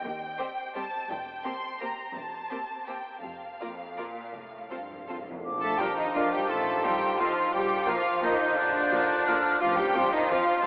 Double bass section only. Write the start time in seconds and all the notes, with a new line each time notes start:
0.04 D#2
1.09 E1
2.15 E1
3.23 F1
4.33 F1
5.44 A#1
6.49 A1
7.52 A#1
8.57 A#1
9.61 A1
10.63 A1